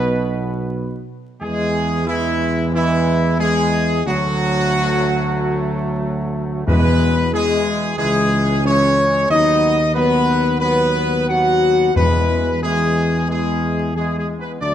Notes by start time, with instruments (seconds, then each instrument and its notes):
Already playing: tuba B1, trombone section B2, french horn section B3, trumpet section B4
1.41 tuba E2, trombone section E3 G#3, french horn section G#3, trumpet section G#4
2.05 french horn section E3, trombone section E3 G#3, trumpet section E4
2.71 french horn section E3, trombone section E3 G#3, trumpet section E4
3.38 trombone section E3 G#3, french horn section G#3, trumpet section G#4
4.06 tuba D2, trombone section F#3 A3, french horn section F#3, trumpet section F#4
6.66 tuba E2, timpani E2, trombone section E3 G#3, french horn section B3, trumpet section B4
7.33 trombone section E3 G#3, french horn section G#3, trumpet section G#4
7.96 tuba C#2, trombone section E3 G#3, french horn section G#3, trumpet section G#4
8.64 trombone section E3 G#3, french horn section C#4, trumpet section C#5
9.30 tuba D#2, trombone section F#3 B3, french horn section D#4, trumpet section D#5
9.94 trombone section F#3 B3, french horn section B3, trumpet section B4
10.60 trombone section F#3 B3, french horn section B3, trumpet section B4
11.27 trombone section F#3 B3, french horn section F#4, trumpet section F#5
11.93 tuba E2, timpani E2, trombone section E3 G#3, french horn section B3, trumpet section B4
12.62 trombone section E3 G#3, french horn section G#3, trumpet section G#4
13.27 trombone section E3 G#3, french horn section G#3, trumpet section G#4
13.95 trombone section E3 G#3, french horn section G#3, trumpet section G#4
14.17 french horn section G#3, trumpet section G#4
14.39 french horn section B3, trumpet section B4
14.61 tuba D2, trombone section F#3 A3, french horn section D4, trumpet section D5